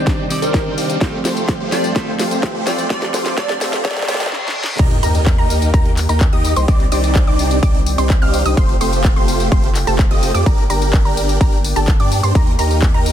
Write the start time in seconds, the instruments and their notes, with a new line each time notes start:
Already playing: analog synth pad C2 C3 D#3 G4 D5, clean electric guitar D#3 G3 C4 D4, riser
0.07 supersaw synth C4 D4 D#4 G4 D5, kick, snare, closed hi-hat, tambourine
0.29 clean electric guitar D#3 G3 C4 D5, open hi-hat, tambourine
0.42 supersaw synth C4 D4 D#4 G4 C5, digital synth lead A#4, closed hi-hat, tambourine
0.54 kick, snare, closed hi-hat, tambourine
0.78 supersaw synth C4 D4 D#4 G4 F5, open hi-hat, tambourine
0.90 closed hi-hat, tambourine
1.00 analog synth pad F2 F3 A3 G4 C5, clean electric guitar F3 G3 A3 C4, supersaw synth A3 C4 F4 G4 C5, kick, snare, closed hi-hat, tambourine
1.25 supersaw synth A3 C4 F4 G4 C5, snare, open hi-hat, tambourine
1.37 closed hi-hat, tambourine
1.48 kick, snare, closed hi-hat, tambourine
1.60 supersaw synth A3 C4 F4 G4 C5
1.71 clean electric guitar F3 G3 A3 C4, digital synth lead D5, snare, open hi-hat, tambourine
1.84 closed hi-hat, tambourine
1.95 clean electric guitar F3 G3 A3 C4, supersaw synth A3 C4 F4 G4 C5, kick, snare, closed hi-hat, tambourine
2.19 supersaw synth A3 C4 F4 G4 C5, snare, open hi-hat, tambourine
2.31 closed hi-hat, tambourine
2.43 kick, snare, closed hi-hat, tambourine
2.55 supersaw synth A3 C4 F4 G4 C5
2.66 clean electric guitar F3 G3 A3 C4, digital synth lead D5, snare, open hi-hat, tambourine
2.78 closed hi-hat, tambourine
2.89 analog synth pad G2 D3 D5, clean electric guitar F3 G3 A3 C4, supersaw synth A3 C4 F4 G4 C5, digital synth lead D5, kick, snare, closed hi-hat, tambourine
3.02 snare, closed hi-hat
3.14 supersaw synth A3 C4 F4 G4 C5, snare, open hi-hat, tambourine
3.26 snare, closed hi-hat, tambourine
3.36 clean electric guitar F3 G3 A3 C4, supersaw synth A3 C4 F4 G4 C5, digital synth lead D5, kick, snare, closed hi-hat, tambourine
3.49 snare
3.61 supersaw synth A3 C4 F4 G4 C5, snare, open hi-hat, tambourine
3.73 snare, closed hi-hat, tambourine
3.83 clean electric guitar F3 G3 A3 C4, supersaw synth A3 C4 F4 G4 C5, digital synth lead D5, kick, snare, closed hi-hat, tambourine, reverse cymbal
3.91 snare
3.97 snare, closed hi-hat
4.02 snare
4.07 clean electric guitar F3 G3 A3 C4, supersaw synth A3 C4 F4 G4 C5, digital synth lead D5, snare, open hi-hat, tambourine
4.14 snare
4.20 snare, closed hi-hat, tambourine
4.26 snare
4.32 snare
4.48 snare
4.63 snare
4.79 sub bass D#2, analog synth pad D#3 A#3 G4, supersaw synth D#4 G4 A#4, synth pluck A#5, kick, closed hi-hat, tambourine, crash, sub drop
4.91 closed hi-hat
5.03 sub bass D#2, supersaw synth D#4 G4 A#4, synth pluck A#5, open hi-hat, tambourine
5.15 closed hi-hat, tambourine
5.26 kick, clap, closed hi-hat, tambourine
5.38 sub bass D#2, supersaw synth D#4 G4 A#4, synth pluck A#5
5.50 open hi-hat, tambourine
5.62 closed hi-hat, tambourine
5.74 sub bass D#2, supersaw synth D#4 G4 A#4, synth pluck A#5, kick, closed hi-hat, tambourine
5.85 closed hi-hat
5.97 clap, open hi-hat, tambourine
6.09 sub bass D#2, supersaw synth D#4 G4 A#4, synth pluck A#5, closed hi-hat, tambourine
6.21 kick, clap, closed hi-hat, tambourine
6.33 sub bass D#2, supersaw synth D#4 G4 D#5, synth pluck D#6
6.45 open hi-hat, tambourine
6.56 sub bass C2, supersaw synth D#4 G4 C5, synth pluck C6, closed hi-hat, tambourine
6.68 sub bass C2, analog synth pad C3 C4 D5, supersaw synth C4 D4 D#4 G4 D5, synth pluck D6, kick, closed hi-hat, tambourine
6.80 closed hi-hat
6.92 sub bass C2, supersaw synth C4 D4 D#4 G4 D5, synth pluck D6, open hi-hat, tambourine
7.04 closed hi-hat, tambourine
7.15 kick, clap, closed hi-hat, tambourine
7.27 sub bass C2, supersaw synth C4 D4 D#4 G4 D5, synth pluck D6
7.39 open hi-hat, tambourine
7.51 closed hi-hat, tambourine
7.63 sub bass C2, supersaw synth C4 D4 D#4 G4 D5, synth pluck D6, kick, closed hi-hat, tambourine
7.75 closed hi-hat
7.86 open hi-hat, tambourine
7.98 sub bass C2, supersaw synth C4 D4 D#4 G4 C5, synth pluck C6, closed hi-hat, tambourine
8.10 kick, clap, closed hi-hat, tambourine
8.22 sub bass C2, supersaw synth C4 D4 D#4 G4 F5, synth pluck F6
8.34 open hi-hat, tambourine
8.45 sub bass C2, supersaw synth C4 D4 D#4 G4 D#5, synth pluck D#6, closed hi-hat, tambourine
8.57 sub bass F1, supersaw synth A3 C4 F4 G4 C5, analog synth pad A3 F4, synth pluck C6, kick, closed hi-hat, tambourine
8.69 closed hi-hat
8.81 sub bass F1, supersaw synth A3 C4 F4 G4 C5, synth pluck C6, open hi-hat, tambourine
8.93 closed hi-hat, tambourine
9.04 kick, clap, closed hi-hat, tambourine
9.16 sub bass F1, supersaw synth A3 C4 F4 G4 C5, synth pluck C6
9.28 open hi-hat, tambourine
9.40 closed hi-hat, tambourine
9.52 sub bass F1, supersaw synth A3 C4 F4 G4 C5, synth pluck C6, kick, closed hi-hat, tambourine
9.64 closed hi-hat
9.75 clap, open hi-hat, tambourine
9.87 sub bass F1, supersaw synth A3 C4 F4 G4 A4, synth pluck A5, closed hi-hat, tambourine
9.99 kick, clap, closed hi-hat, tambourine
10.11 sub bass F1, supersaw synth A3 C4 F4 G4 D#5, synth pluck D#6
10.23 open hi-hat, tambourine
10.34 sub bass F2, supersaw synth A3 C4 F4 G4 D5, synth pluck D6, closed hi-hat, tambourine
10.46 sub bass G1, analog synth pad A#3 D4, supersaw synth D4 G4 A#4, synth pluck A#5, kick, closed hi-hat, tambourine
10.58 closed hi-hat
10.70 sub bass G1, supersaw synth D4 G4 A#4, synth pluck A#5, open hi-hat, tambourine
10.82 closed hi-hat, tambourine
10.93 kick, clap, closed hi-hat, tambourine
11.05 sub bass G1, supersaw synth D4 G4 A#4, synth pluck A#5
11.17 open hi-hat, tambourine
11.29 closed hi-hat, tambourine
11.41 sub bass G1, supersaw synth D4 G4 A#4, synth pluck A#5, kick, closed hi-hat, tambourine
11.53 closed hi-hat
11.64 open hi-hat, tambourine
11.76 sub bass G1, supersaw synth D4 G4 A4, synth pluck A5, closed hi-hat, tambourine
11.88 kick, clap, closed hi-hat, tambourine
12.00 sub bass G2, supersaw synth D4 G4 D5, synth pluck D6, closed hi-hat
12.12 open hi-hat, tambourine
12.23 sub bass G2, supersaw synth D4 G4 C5, synth pluck C6, closed hi-hat, tambourine
12.35 sub bass D#2, analog synth pad D#3 G4, supersaw synth D#4 G4 A#4, synth pluck A#5, kick, closed hi-hat, tambourine
12.47 closed hi-hat
12.59 sub bass D#2, supersaw synth D#4 G4 A#4, synth pluck A#5, open hi-hat, tambourine
12.71 closed hi-hat, tambourine
12.82 kick, clap, closed hi-hat, tambourine
12.94 sub bass D#2, supersaw synth D#4 G4 A#4, synth pluck A#5
13.06 open hi-hat, tambourine